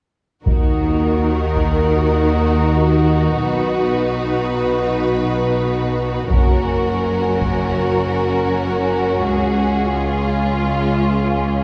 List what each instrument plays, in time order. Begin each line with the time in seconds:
0.45 double bass section D#2, cello section D#3, viola section D#4, violin section F#4 A#4, taiko
1.55 taiko
3.38 double bass section B1, cello section B2, violin section B4
6.31 double bass section F#1, cello section F#2, viola section C#4, violin section F#4 A#4, taiko
7.41 taiko
9.24 double bass section C#2, cello section C#2, violin section G#4
9.95 violin section F4